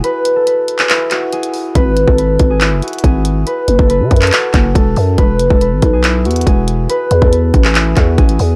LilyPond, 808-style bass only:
\new Staff \with { instrumentName = "808-style bass" } { \clef bass \time 4/4 \key fis \dorian \tempo 4 = 140 r1 | gis,,8. gis,,8. gis,,8. fis,,16 r8 gis,,4 | r8 fis,,16 fis,,8 cis16 fis,8 r8 fis,,8 e,,8 fis,8 | e,,8 fis,,16 e,,8 gis,,16 b,,4 e,8 e,,4 |
r8 e,16 e,8. a,,4 e,8 a,,8 e,8 | }